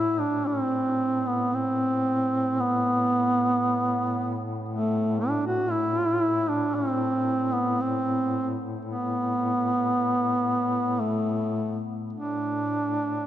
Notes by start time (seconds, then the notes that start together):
Already playing: A2 E4
0.20 D4
0.47 C4
1.27 B3
1.54 C4
2.60 B3
4.69 A3
5.20 D4
5.46 F#4
5.71 E4
6.49 D4
6.75 C4
7.53 B3
7.80 C4
8.85 B3
10.99 A3
12.09 A2 D4